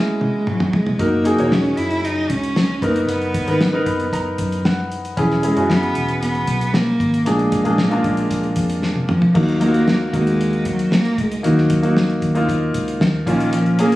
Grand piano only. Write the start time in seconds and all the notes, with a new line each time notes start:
Already playing: E3 C#4 E4 F#4 G#4
0.99 D#4 F#4 A#4
1.25 D#4 F#4 G#4
1.38 D#4 F#4 C#5
2.82 B3 D#4 A#4
3.47 B3 D#4 A#4
3.73 B3 D#4 A#4
3.86 B5
4.13 A#5
4.65 F#5
5.17 E3 C#4 E4 G#4
5.43 C#4 E4 G#4
5.57 C#4 E4 F#4
7.25 A#2 A#3 D4 G#4
7.64 A#3 D4 G#4
7.90 A#3 D4 F4
9.35 D#3 A#3 D#4 F#4
9.60 A#3 D#4 F4
9.68 F#4
10.13 A#3 D#4 F#4
11.43 D#3 A#3 D#4 F#4
11.83 A#3 D#4 F#4
12.35 A#3 D#4 F4
13.26 A#2 A#3 C#4 F4
13.79 A#3 C#4 G#4